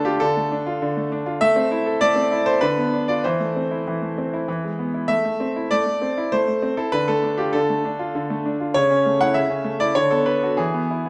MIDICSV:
0, 0, Header, 1, 2, 480
1, 0, Start_track
1, 0, Tempo, 602410
1, 1124, Time_signature, 3, 2, 24, 8
1, 2085, Tempo, 619835
1, 4485, Tempo, 607287
1, 7845, Tempo, 626305
1, 8707, End_track
2, 0, Start_track
2, 0, Title_t, "Grand piano"
2, 0, Program_c, 0, 0
2, 0, Control_c, 0, 64, 127
2, 0, Note_on_c, 0, 50, 75
2, 0, Note_on_c, 0, 57, 59
2, 0, Note_on_c, 0, 62, 55
2, 0, Note_on_c, 0, 69, 97
2, 38, Note_on_c, 0, 65, 59
2, 38, Note_on_c, 0, 67, 87
2, 117, Note_off_c, 0, 62, 0
2, 157, Note_off_c, 0, 50, 0
2, 159, Note_off_c, 0, 69, 0
2, 159, Note_on_c, 0, 69, 99
2, 163, Note_off_c, 0, 67, 0
2, 169, Note_on_c, 0, 50, 69
2, 173, Control_c, 0, 64, 0
2, 184, Note_off_c, 0, 57, 0
2, 236, Note_off_c, 0, 65, 0
2, 292, Note_on_c, 0, 57, 54
2, 412, Note_on_c, 0, 62, 62
2, 483, Note_off_c, 0, 57, 0
2, 530, Note_on_c, 0, 65, 66
2, 602, Note_off_c, 0, 62, 0
2, 641, Note_off_c, 0, 50, 0
2, 653, Note_on_c, 0, 50, 73
2, 721, Note_off_c, 0, 65, 0
2, 771, Note_on_c, 0, 57, 56
2, 883, Note_off_c, 0, 69, 0
2, 892, Note_on_c, 0, 62, 65
2, 960, Note_off_c, 0, 57, 0
2, 1006, Note_on_c, 0, 65, 63
2, 1080, Note_off_c, 0, 62, 0
2, 1112, Note_off_c, 0, 50, 0
2, 1122, Note_on_c, 0, 76, 120
2, 1124, Note_off_c, 0, 65, 0
2, 1125, Note_on_c, 0, 57, 83
2, 1243, Note_on_c, 0, 60, 67
2, 1272, Control_c, 0, 64, 127
2, 1366, Note_on_c, 0, 64, 65
2, 1433, Note_off_c, 0, 60, 0
2, 1484, Note_on_c, 0, 69, 64
2, 1554, Note_off_c, 0, 64, 0
2, 1593, Note_off_c, 0, 57, 0
2, 1599, Note_off_c, 0, 76, 0
2, 1600, Note_on_c, 0, 74, 115
2, 1605, Note_on_c, 0, 57, 72
2, 1674, Note_off_c, 0, 69, 0
2, 1718, Note_on_c, 0, 60, 58
2, 1846, Note_on_c, 0, 64, 59
2, 1912, Note_off_c, 0, 60, 0
2, 1956, Note_on_c, 0, 69, 65
2, 1960, Note_on_c, 0, 72, 102
2, 1962, Note_off_c, 0, 74, 0
2, 2038, Note_off_c, 0, 64, 0
2, 2072, Note_off_c, 0, 57, 0
2, 2079, Note_on_c, 0, 71, 103
2, 2081, Note_off_c, 0, 69, 0
2, 2083, Note_off_c, 0, 72, 0
2, 2086, Note_on_c, 0, 50, 78
2, 2095, Control_c, 0, 64, 0
2, 2206, Note_on_c, 0, 59, 55
2, 2229, Control_c, 0, 64, 127
2, 2330, Note_on_c, 0, 62, 53
2, 2397, Note_off_c, 0, 59, 0
2, 2441, Note_off_c, 0, 71, 0
2, 2445, Note_on_c, 0, 74, 78
2, 2450, Note_on_c, 0, 65, 50
2, 2518, Note_off_c, 0, 62, 0
2, 2550, Note_off_c, 0, 50, 0
2, 2564, Note_off_c, 0, 74, 0
2, 2567, Note_off_c, 0, 65, 0
2, 2569, Note_on_c, 0, 72, 84
2, 2570, Control_c, 0, 64, 0
2, 2577, Note_on_c, 0, 52, 70
2, 2692, Note_on_c, 0, 57, 52
2, 2720, Control_c, 0, 64, 127
2, 2815, Note_on_c, 0, 60, 48
2, 2880, Note_off_c, 0, 57, 0
2, 2933, Note_on_c, 0, 64, 48
2, 3002, Note_off_c, 0, 60, 0
2, 3048, Note_off_c, 0, 52, 0
2, 3060, Note_on_c, 0, 52, 58
2, 3121, Note_off_c, 0, 64, 0
2, 3173, Note_on_c, 0, 57, 46
2, 3294, Note_on_c, 0, 60, 48
2, 3360, Note_off_c, 0, 57, 0
2, 3415, Note_on_c, 0, 64, 51
2, 3481, Note_off_c, 0, 60, 0
2, 3517, Note_off_c, 0, 52, 0
2, 3526, Note_off_c, 0, 72, 0
2, 3529, Note_off_c, 0, 64, 0
2, 3530, Note_on_c, 0, 52, 65
2, 3533, Control_c, 0, 64, 0
2, 3650, Note_on_c, 0, 56, 47
2, 3661, Control_c, 0, 64, 127
2, 3767, Note_on_c, 0, 59, 48
2, 3838, Note_off_c, 0, 56, 0
2, 3885, Note_on_c, 0, 64, 41
2, 3957, Note_off_c, 0, 59, 0
2, 3992, Note_off_c, 0, 52, 0
2, 3992, Note_on_c, 0, 76, 108
2, 3999, Note_on_c, 0, 57, 65
2, 4004, Note_off_c, 0, 64, 0
2, 4013, Control_c, 0, 64, 0
2, 4115, Note_off_c, 0, 57, 0
2, 4127, Note_on_c, 0, 57, 52
2, 4163, Control_c, 0, 64, 127
2, 4241, Note_on_c, 0, 60, 51
2, 4317, Note_off_c, 0, 57, 0
2, 4365, Note_on_c, 0, 64, 51
2, 4434, Note_off_c, 0, 60, 0
2, 4477, Note_off_c, 0, 76, 0
2, 4478, Note_on_c, 0, 74, 99
2, 4485, Note_on_c, 0, 57, 66
2, 4489, Control_c, 0, 64, 0
2, 4556, Note_off_c, 0, 64, 0
2, 4589, Note_off_c, 0, 57, 0
2, 4601, Note_on_c, 0, 57, 48
2, 4723, Note_on_c, 0, 60, 55
2, 4795, Note_off_c, 0, 57, 0
2, 4848, Note_on_c, 0, 64, 57
2, 4915, Note_off_c, 0, 60, 0
2, 4961, Note_off_c, 0, 74, 0
2, 4963, Note_on_c, 0, 72, 99
2, 4968, Note_on_c, 0, 57, 61
2, 5038, Note_off_c, 0, 64, 0
2, 5075, Note_off_c, 0, 57, 0
2, 5087, Note_on_c, 0, 57, 54
2, 5204, Note_on_c, 0, 60, 59
2, 5278, Note_off_c, 0, 57, 0
2, 5320, Note_on_c, 0, 69, 80
2, 5322, Note_on_c, 0, 64, 50
2, 5325, Note_off_c, 0, 72, 0
2, 5398, Note_off_c, 0, 60, 0
2, 5438, Note_on_c, 0, 71, 109
2, 5444, Note_off_c, 0, 69, 0
2, 5445, Note_off_c, 0, 64, 0
2, 5446, Note_on_c, 0, 50, 74
2, 5562, Note_on_c, 0, 69, 90
2, 5563, Note_off_c, 0, 71, 0
2, 5567, Note_on_c, 0, 57, 56
2, 5605, Control_c, 0, 64, 127
2, 5687, Note_on_c, 0, 62, 58
2, 5761, Note_off_c, 0, 57, 0
2, 5797, Note_on_c, 0, 67, 81
2, 5802, Note_on_c, 0, 65, 54
2, 5806, Note_off_c, 0, 69, 0
2, 5881, Note_off_c, 0, 62, 0
2, 5912, Note_off_c, 0, 50, 0
2, 5917, Note_on_c, 0, 69, 90
2, 5924, Note_off_c, 0, 67, 0
2, 5924, Note_on_c, 0, 50, 68
2, 5937, Control_c, 0, 64, 0
2, 5998, Note_off_c, 0, 65, 0
2, 6048, Note_on_c, 0, 57, 51
2, 6170, Note_on_c, 0, 62, 59
2, 6241, Note_off_c, 0, 57, 0
2, 6285, Note_on_c, 0, 65, 61
2, 6361, Note_off_c, 0, 62, 0
2, 6397, Note_off_c, 0, 50, 0
2, 6408, Note_on_c, 0, 50, 71
2, 6479, Note_off_c, 0, 65, 0
2, 6529, Note_on_c, 0, 57, 61
2, 6642, Note_off_c, 0, 69, 0
2, 6650, Note_on_c, 0, 62, 61
2, 6721, Note_off_c, 0, 57, 0
2, 6766, Note_on_c, 0, 65, 54
2, 6841, Note_off_c, 0, 62, 0
2, 6873, Note_off_c, 0, 50, 0
2, 6878, Note_on_c, 0, 73, 106
2, 6886, Note_off_c, 0, 65, 0
2, 6889, Note_on_c, 0, 49, 80
2, 7006, Note_on_c, 0, 61, 60
2, 7047, Control_c, 0, 64, 127
2, 7127, Note_on_c, 0, 57, 54
2, 7196, Note_off_c, 0, 61, 0
2, 7239, Note_off_c, 0, 73, 0
2, 7243, Note_on_c, 0, 78, 101
2, 7246, Note_on_c, 0, 64, 55
2, 7316, Note_off_c, 0, 57, 0
2, 7348, Note_off_c, 0, 49, 0
2, 7351, Note_on_c, 0, 76, 89
2, 7360, Note_on_c, 0, 49, 63
2, 7362, Note_off_c, 0, 78, 0
2, 7373, Control_c, 0, 64, 0
2, 7435, Note_off_c, 0, 64, 0
2, 7474, Note_on_c, 0, 61, 56
2, 7590, Note_on_c, 0, 57, 55
2, 7669, Note_off_c, 0, 61, 0
2, 7713, Note_on_c, 0, 74, 97
2, 7715, Note_off_c, 0, 76, 0
2, 7717, Note_on_c, 0, 64, 62
2, 7787, Note_off_c, 0, 57, 0
2, 7825, Note_off_c, 0, 49, 0
2, 7832, Note_on_c, 0, 73, 100
2, 7837, Note_off_c, 0, 74, 0
2, 7839, Note_off_c, 0, 64, 0
2, 7839, Note_on_c, 0, 50, 72
2, 7952, Note_on_c, 0, 69, 81
2, 7954, Note_off_c, 0, 73, 0
2, 7957, Note_on_c, 0, 59, 51
2, 7975, Control_c, 0, 64, 127
2, 8069, Note_on_c, 0, 71, 90
2, 8074, Note_off_c, 0, 69, 0
2, 8075, Note_on_c, 0, 62, 51
2, 8147, Note_off_c, 0, 59, 0
2, 8192, Note_off_c, 0, 71, 0
2, 8198, Note_on_c, 0, 69, 67
2, 8201, Note_on_c, 0, 66, 47
2, 8267, Note_off_c, 0, 62, 0
2, 8302, Note_off_c, 0, 50, 0
2, 8308, Note_on_c, 0, 68, 81
2, 8314, Note_on_c, 0, 52, 63
2, 8318, Note_off_c, 0, 69, 0
2, 8319, Note_off_c, 0, 66, 0
2, 8326, Control_c, 0, 64, 0
2, 8438, Note_on_c, 0, 59, 51
2, 8476, Control_c, 0, 64, 127
2, 8565, Note_on_c, 0, 64, 47
2, 8632, Note_off_c, 0, 59, 0
2, 8679, Note_on_c, 0, 59, 50
2, 8707, Note_off_c, 0, 52, 0
2, 8707, Note_off_c, 0, 59, 0
2, 8707, Note_off_c, 0, 64, 0
2, 8707, Note_off_c, 0, 68, 0
2, 8707, End_track
0, 0, End_of_file